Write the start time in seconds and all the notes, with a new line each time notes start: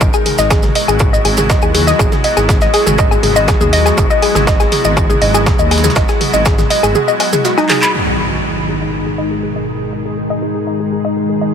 0.01 G#1 F#3 G#3 B3 E4 F#4 D#5, kick, tambourine, maracas
0.13 G#4, low woodblock, maracas
0.26 G#4, open hi-hat, mid tom, tambourine
0.38 G#1 D#5, snare, maracas
0.50 G#4, kick, snare, tambourine, low woodblock, maracas
0.62 G#4, snare, mid tom, maracas
0.75 D#5, open hi-hat, tambourine
0.88 G#1 G#4, low woodblock, maracas
0.99 G#4, kick, mid tom, tambourine, maracas
1.13 D#5, maracas
1.25 G#1 G#4, open hi-hat, tambourine, low woodblock
1.37 G#4, mid tom, maracas
1.50 D#5, kick, snare, tambourine, maracas
1.62 D#2 G#4, low woodblock, maracas
1.74 G#4, snare, open hi-hat, mid tom, tambourine
1.87 D#5, snare, maracas
1.99 G#1 G#4, kick, tambourine, low woodblock, maracas
2.12 G#4, snare, mid tom, maracas
2.24 D#5, open hi-hat, tambourine
2.37 G#1 G#4, snare, low woodblock, maracas
2.49 G#4, kick, snare, mid tom, tambourine, maracas
2.61 D#5, snare, maracas
2.74 G#4, open hi-hat, tambourine, low woodblock
2.86 G#1 G#4, mid tom, maracas
2.98 D#5, kick, tambourine, maracas
3.11 G#4, low woodblock, maracas
3.23 G#1 G#4, open hi-hat, mid tom, tambourine
3.36 D#5, maracas
3.48 G#4, kick, snare, tambourine, low woodblock, maracas
3.61 D#2 G#4, mid tom, maracas
3.73 D#5, open hi-hat, tambourine
3.86 G#4, snare, low woodblock, maracas
3.98 G#1 G#4, kick, mid tom, tambourine, maracas
4.10 D#5, maracas
4.22 G#4, open hi-hat, tambourine, low woodblock
4.35 G#1 G#4, snare, mid tom, maracas
4.47 D#5, kick, snare, tambourine, maracas
4.60 G#4, snare, low woodblock, maracas
4.72 G#4, open hi-hat, mid tom, tambourine
4.85 G#1 D#5, maracas
4.97 G#4, kick, tambourine, low woodblock, maracas
5.09 G#4, mid tom, maracas
5.22 G#1 D#5, open hi-hat, tambourine
5.34 G#4, low woodblock, maracas
5.46 G#4, kick, snare, mid tom, tambourine, maracas
5.59 D#2 D#5, maracas
5.71 G#4, snare, open hi-hat, tambourine, low woodblock
5.78 snare, tambourine
5.84 G#4, snare, mid tom, tambourine, maracas
5.90 snare, tambourine
5.95 G#1 D#5, kick, snare, tambourine, maracas
6.08 G#4, snare, low woodblock, maracas
6.21 G#4, open hi-hat, mid tom
6.33 G#1 D#5, maracas
6.45 G#4, kick, snare, tambourine, low woodblock, maracas
6.58 G#4, snare, mid tom, maracas
6.70 D#5, open hi-hat, tambourine
6.83 G#1 G#4, low woodblock, maracas
6.95 G#4, mid tom, maracas
7.08 D#5, maracas
7.20 D#5, snare, open hi-hat, tambourine, low woodblock
7.33 G#4, mid tom, maracas
7.45 F#4, snare, tambourine, maracas
7.58 D#4, snare, low woodblock, maracas
7.70 G#4, clap, open hi-hat, mid tom, tambourine
7.82 B5, clap, maracas
7.94 G#2 B2 D#3 G#3 D#4 G#4, impact
8.07 D#5
8.19 G#4
8.32 G#4
8.44 D#5
8.57 G#4
8.69 G#4
8.81 D#5
8.93 G#4
9.06 G#4
9.18 D#5
9.31 G#4
9.43 G#4
9.56 D#5
9.68 G#4
9.81 G#4
9.93 D#5
10.05 G#4
10.17 G#4
10.30 D#5
10.42 G#4
10.55 G#4
10.67 D#5
10.80 G#4
10.92 G#4
11.05 D#5
11.17 G#4
11.29 G#4
11.41 D#5